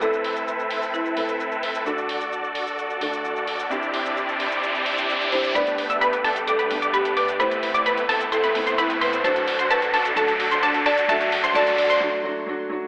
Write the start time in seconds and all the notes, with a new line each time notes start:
0.00 A2 C4 E4 A4 B4 E5, shaker
0.13 shaker
0.24 open hi-hat
0.36 shaker
0.48 shaker
0.59 shaker
0.71 open hi-hat
0.82 shaker
0.94 E4, shaker
1.06 shaker
1.16 A2 C4 E4 A4 B4, open hi-hat
1.29 shaker
1.40 shaker
1.52 shaker
1.63 open hi-hat
1.75 shaker
1.85 D3 A3 D4 F#4 A4 D5, riser, shaker
1.98 shaker
2.09 open hi-hat
2.21 shaker
2.33 shaker
2.44 shaker
2.55 open hi-hat
2.67 shaker
2.79 shaker
2.90 shaker
3.00 D3 A3 D4 F#4 A4, open hi-hat
3.13 shaker
3.25 shaker
3.36 shaker
3.47 open hi-hat
3.59 shaker
3.69 C3 C4 D4 E4 G4 D5, shaker
3.83 shaker
3.94 open hi-hat
4.06 shaker
4.17 shaker
4.29 shaker
4.40 open hi-hat
4.52 shaker
4.63 shaker
4.75 shaker
4.86 open hi-hat
4.98 shaker
5.09 shaker
5.21 shaker
5.31 C4 D4 E4 G4 C5, open hi-hat
5.44 shaker
5.54 G1 G2 G3 A3 B3 D4 G4 B4 D5 B5, closed hi-hat, riser, shaker
5.67 closed hi-hat, shaker
5.78 open hi-hat
5.90 G1 A3 B3 D4 G4 E5 E6, closed hi-hat, shaker
6.01 G1 A3 B3 D4 G4 B4 B5, closed hi-hat, shaker
6.13 closed hi-hat, shaker
6.24 G1 A3 B3 D4 G4 A4 A5, open hi-hat
6.36 closed hi-hat, shaker
6.47 G1 A3 B3 D4 G4 A4 D5 D6, closed hi-hat, shaker
6.59 G1 A3 B3 D4 G4 B4 B5, closed hi-hat, shaker
6.69 G2 G3 A3 B3 D4, open hi-hat
6.82 G1 A3 B3 D4 G4 D5 D6, closed hi-hat, shaker
6.93 G1 A3 B3 D4 G4 B4 B5, closed hi-hat, shaker
7.05 closed hi-hat, shaker
7.17 G2 A3 B3 D4 G4 B4 D5 D6, open hi-hat
7.28 closed hi-hat, shaker
7.39 A1 A2 A3 B3 C4 E4 A4 B4 C5 B5, closed hi-hat, shaker
7.51 closed hi-hat, shaker
7.63 open hi-hat
7.74 A1 A3 B3 C4 E4 D5 D6, closed hi-hat, shaker
7.86 A1 A3 B3 C4 E4 B4 B5, closed hi-hat, shaker
7.98 closed hi-hat, shaker
8.09 A1 A3 B3 C4 E4 A4 A5, open hi-hat
8.21 closed hi-hat, shaker
8.32 A1 A3 B3 C4 E4 A4 C5 C6, closed hi-hat, shaker
8.44 A1 A3 B3 C4 E4 B4 B5, closed hi-hat, shaker
8.54 A2 A3 B3 C4 E4, open hi-hat
8.67 A1 A3 B3 C4 E4 C5 C6, closed hi-hat, shaker
8.78 A1 A3 B3 C4 E4 B4 B5, closed hi-hat, shaker
8.90 closed hi-hat, shaker
9.01 A2 A3 B3 C4 E4 B4 C5 C6, open hi-hat
9.13 closed hi-hat, shaker
9.23 D2 F#3 A3 D4 F#4 A4 C5 A5, closed hi-hat, shaker
9.36 closed hi-hat, shaker
9.48 open hi-hat
9.59 D2 D4 F#4 C5 C6, closed hi-hat, shaker
9.70 D2 D4 F#4 A4 B4 A5, closed hi-hat, shaker
9.82 closed hi-hat, shaker
9.94 D2 D4 F#4 A4 A5, open hi-hat
10.05 closed hi-hat, shaker
10.16 D2 F#3 A3 D4 F#4 A4 A5, closed hi-hat, shaker
10.28 closed hi-hat, shaker
10.40 open hi-hat
10.51 D2 D4 F#4 C5 C6, closed hi-hat, shaker
10.63 D2 D4 F#4 A4 A5, closed hi-hat, shaker
10.74 closed hi-hat, shaker
10.86 D2 D4 F#4 A4 D5 A5, open hi-hat
10.98 closed hi-hat, shaker
11.08 C2 F#3 A3 D4 F#4 A4 E5 A5, closed hi-hat, shaker
11.21 closed hi-hat, shaker
11.32 open hi-hat
11.44 C2 D4 F#4 C5 C6, closed hi-hat, shaker
11.54 C2 F#3 A3 D4 F#4 A4 D5 A5, closed hi-hat, shaker
11.67 closed hi-hat, shaker
11.78 D5, open hi-hat
11.90 C2 D4 F#4 C5 C6, closed hi-hat, shaker
12.00 F#3 A3 D4 F#4
12.23 F#3 A3 D4 F#4
12.46 F#3 A3 D4 F#4
12.69 F#3 A3 D4 F#4